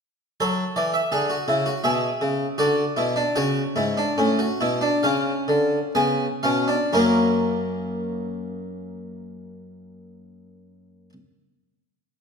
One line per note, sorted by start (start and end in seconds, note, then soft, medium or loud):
0.40 0.62 F#3 medium
0.40 1.10 A4 medium
0.40 0.62 C#5 medium
0.76 0.98 E3 soft
0.76 0.93 D5 medium
0.94 1.11 E5 soft
1.12 1.34 D3 soft
1.12 1.29 G#4 medium
1.12 1.83 F#5 medium
1.30 1.47 F#4 medium
1.48 1.71 C#3 soft
1.48 1.66 E4 soft
1.66 1.84 F#4 soft
1.84 2.07 B2 medium
1.84 2.57 G#4 medium
1.84 2.57 E5 medium
2.21 2.45 C#3 medium
2.58 2.83 D3 medium
2.58 2.82 F#4 medium
2.58 3.34 D5 medium
2.97 3.22 B2 medium
2.97 3.16 E4 medium
3.16 3.36 D4 medium
3.36 3.61 C#3 medium
3.36 3.61 F#4 medium
3.36 4.99 C#5 medium
3.76 4.02 G#2 medium
3.76 3.96 E4 medium
3.97 4.17 D4 medium
4.18 4.44 A2 medium
4.18 4.38 C#4 medium
4.39 4.59 F#4 medium
4.61 4.88 B2 medium
4.61 4.81 E4 medium
4.81 5.03 D4 medium
5.03 5.31 C#3 medium
5.03 5.92 C#4 medium
5.03 5.92 F5 medium
5.48 5.77 D3 medium
5.95 6.25 C#3 medium
5.95 6.25 B3 medium
5.95 6.25 G#5 medium
6.43 6.75 B2 medium
6.43 6.68 C#4 medium
6.43 6.75 F5 medium
6.68 6.93 D4 medium
6.93 11.09 F#2 medium
6.93 11.13 F#3 medium
6.93 11.12 A#3 medium
6.93 11.10 C#4 medium
6.93 11.10 A#4 medium